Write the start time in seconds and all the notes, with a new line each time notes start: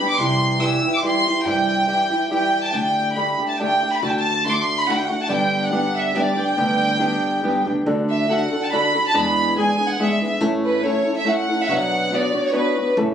Already playing: G4
0.00 G3 B3 D4
0.10 D6
0.18 C2 C3 E3 G3 E4 G4 C6
0.60 E3 G3 E4 G4 E6
0.83 G3 E4 G4
0.95 D6
1.03 E3 G3 E4 G4 C6
1.27 G3 E4 G4
1.45 G2 C3 E3 G3 E4 G4 G5
1.88 E3 G3 E4 G4
2.10 G3 E4 G4
2.30 E3 G3 E4 G4 G5
2.64 A5
2.72 D2 D3 A3 D4 G4 G5
3.16 D3 A3 D4 G4 B5
3.39 A3 D4 G4
3.49 A5
3.60 D3 A3 D4 G4 G5
3.82 A3 D4 G4
3.94 B5
4.02 D2 D3 A3 D4 F#4 A5
4.10 G5
4.20 A5
4.45 D3 A3 D4 F#4 C6
4.53 D6
4.62 C6
4.80 B5
4.88 D3 A3 D4 F#4 F#5
4.97 G5
5.07 A3 D4 F#4 F#5
5.23 A5
5.28 G1 G2 D3 G3 B3 D4 G4
5.33 G5
5.65 F#5
5.71 G3 B3 D4 G4
5.97 E5
6.15 G3 B3 D4 G4 D5
6.37 G3 B3 D4 G4 G5
6.57 D2 G2 D3 G3 B3 D4 G4
6.99 G3 B3 D4 G4
7.43 E2 G3 B3 D4 G4
7.66 D2 G3 B3 D4 G4
7.86 D2 D3 D4 F#4 A4
8.10 E5
8.29 D3 D4 F#4 A4 F#5
8.52 D4 F#4 A4
8.63 A5
8.73 D3 D4 F#4 A4 B5
8.95 D4 F#4 A4
9.06 A5
9.13 E2 E3 G#3 B3 D4 G#4 B5
9.56 G#3 B3 D4 G#4 G#5
9.79 G#3 B3 D4 G#4
9.89 F#5
9.99 G#3 B3 D4 G#4 E5
10.22 G#3 B3 D4 G#4
10.40 A1 A2 A3 C#4 E4 A4
10.64 B4
10.83 A3 C#4 E4 A4 C#5
11.05 C#4 E4 A4
11.17 E5
11.24 A3 C#4 E4 A4 F#5
11.49 C#4 E4 A4
11.61 E5
11.68 B1 B2 F#3 B3 D4 F#4 C#5 F#5
12.12 B3 D4 F#4 C#5 D5
12.34 B3 D4 F#4 C#5
12.45 C#5
12.53 B3 D4 F#4 B4 C#5
12.77 B3 D4 F#4 C#5
12.97 A1 A2 E3 A3 C#4 A4